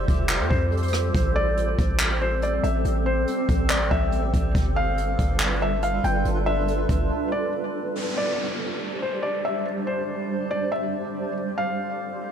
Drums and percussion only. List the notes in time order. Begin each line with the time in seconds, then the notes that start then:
0.08 kick, closed hi-hat
0.29 clap, closed hi-hat
0.51 kick
0.72 closed hi-hat
0.77 closed hi-hat
0.83 closed hi-hat
0.88 closed hi-hat
0.93 cross-stick, closed hi-hat
1.14 kick, closed hi-hat
1.57 closed hi-hat
1.79 kick, closed hi-hat
1.99 clap, closed hi-hat
2.42 closed hi-hat
2.64 closed hi-hat
2.85 closed hi-hat
3.28 closed hi-hat
3.49 kick, closed hi-hat
3.70 clap, closed hi-hat
3.91 kick
4.12 closed hi-hat
4.34 kick, closed hi-hat
4.55 kick, closed hi-hat
4.98 closed hi-hat
5.19 kick, closed hi-hat
5.40 clap, closed hi-hat
5.82 closed hi-hat
6.04 closed hi-hat
6.25 closed hi-hat
6.68 closed hi-hat
6.89 kick, closed hi-hat